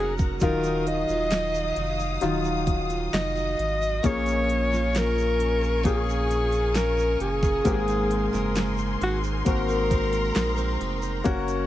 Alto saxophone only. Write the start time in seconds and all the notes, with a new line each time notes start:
0.00 G#4
0.43 A#4
0.88 D#5
3.13 D#5
4.06 C#5
4.98 A#4
5.86 G#4
6.76 A#4
7.21 G#4
9.03 F#4
9.48 A#4